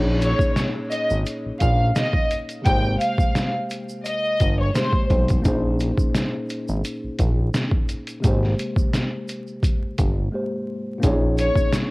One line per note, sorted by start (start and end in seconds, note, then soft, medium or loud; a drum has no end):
0.00 0.34 A#1 loud
0.00 2.60 A#2 medium
0.00 2.60 A#3 medium
0.00 2.61 C#4 medium
0.00 2.62 D#4 medium
0.00 2.63 G#4 medium
0.00 2.64 C#5 medium
0.22 0.54 C#5 medium
0.22 closed hi-hat medium
0.22 shaker medium
0.39 kick loud
0.39 shaker soft
0.56 snare loud
0.56 closed hi-hat medium
0.56 shaker medium
0.91 1.08 D#5 medium
0.91 closed hi-hat medium
0.91 shaker medium
1.10 1.24 G#1 medium
1.10 shaker medium
1.26 closed hi-hat medium
1.26 shaker medium
1.46 1.52 A#1 soft
1.60 1.92 A#1 medium
1.60 1.78 F5 medium
1.60 kick loud
1.60 closed hi-hat medium
1.60 shaker medium
1.96 2.28 D#5 medium
1.96 snare loud
1.96 closed hi-hat loud
1.96 shaker medium
2.13 kick medium
2.31 closed hi-hat medium
2.31 shaker medium
2.49 closed hi-hat medium
2.49 shaker soft
2.62 4.69 C3 medium
2.62 4.70 G#3 medium
2.62 4.71 A#3 medium
2.62 2.97 G5 loud
2.62 kick loud
2.62 closed hi-hat medium
2.62 shaker medium
2.66 2.96 G#1 loud
2.66 4.72 G4 medium
2.66 4.73 C5 medium
3.01 3.51 F5 medium
3.01 closed hi-hat medium
3.01 shaker medium
3.18 kick loud
3.18 shaker soft
3.35 snare loud
3.35 closed hi-hat loud
3.35 shaker medium
3.70 closed hi-hat medium
3.70 shaker medium
3.89 shaker medium
4.05 4.56 D#5 medium
4.05 closed hi-hat medium
4.05 shaker medium
4.40 4.71 G1 loud
4.40 kick medium
4.40 closed hi-hat medium
4.40 shaker medium
4.60 4.74 C#5 medium
4.73 5.44 G#2 soft
4.73 5.44 G#3 medium
4.73 5.41 A#3 soft
4.73 5.45 G4 soft
4.73 5.06 C5 medium
4.73 snare loud
4.73 closed hi-hat loud
4.73 shaker medium
4.77 5.46 C5 medium
4.92 kick medium
5.10 5.40 B1 medium
5.10 kick loud
5.10 closed hi-hat medium
5.10 shaker medium
5.28 kick medium
5.28 closed hi-hat medium
5.28 shaker soft
5.40 8.18 A#2 medium
5.40 8.18 A#3 medium
5.40 8.19 C#4 medium
5.45 5.92 A#1 loud
5.45 8.20 D#4 medium
5.45 8.21 G#4 medium
5.45 8.22 C5 medium
5.45 kick loud
5.45 closed hi-hat medium
5.45 shaker medium
5.80 closed hi-hat medium
5.80 shaker soft
5.97 kick loud
5.97 shaker soft
6.14 snare loud
6.14 closed hi-hat loud
6.14 shaker medium
6.49 closed hi-hat medium
6.49 shaker medium
6.68 6.83 G#1 medium
6.68 shaker soft
6.85 closed hi-hat medium
6.85 shaker medium
7.04 7.10 A#1 medium
7.19 7.50 A#1 medium
7.19 kick loud
7.19 closed hi-hat medium
7.19 shaker medium
7.54 snare loud
7.54 closed hi-hat loud
7.54 shaker medium
7.72 kick medium
7.89 closed hi-hat medium
7.89 shaker medium
8.07 closed hi-hat medium
8.07 shaker soft
8.20 10.27 C3 medium
8.20 10.28 G#3 medium
8.20 kick loud
8.20 closed hi-hat medium
8.20 shaker medium
8.24 8.55 G#1 loud
8.24 10.29 A#3 medium
8.24 10.30 G4 medium
8.28 10.31 C5 medium
8.43 snare soft
8.59 closed hi-hat medium
8.59 shaker medium
8.76 kick loud
8.76 shaker soft
8.94 snare loud
8.94 closed hi-hat medium
8.94 shaker medium
9.28 closed hi-hat medium
9.28 shaker medium
9.48 shaker medium
9.63 kick loud
9.63 closed hi-hat medium
9.63 shaker medium
9.98 10.29 G1 medium
9.98 kick loud
9.98 closed hi-hat medium
9.98 shaker medium
10.31 11.02 G#2 soft
10.31 11.02 G#3 soft
10.31 10.99 A#3 soft
10.31 11.03 G4 soft
10.35 11.04 C5 medium
10.98 11.91 A#2 medium
10.98 11.91 A#3 medium
10.98 11.91 C#4 medium
11.03 11.50 A#1 loud
11.03 11.91 D#4 medium
11.03 11.91 G#4 medium
11.03 11.91 C#5 medium
11.03 kick loud
11.03 closed hi-hat medium
11.03 shaker medium
11.38 11.70 C#5 medium
11.38 closed hi-hat medium
11.38 shaker medium
11.55 kick loud
11.55 shaker medium
11.72 snare loud
11.72 closed hi-hat loud
11.72 shaker medium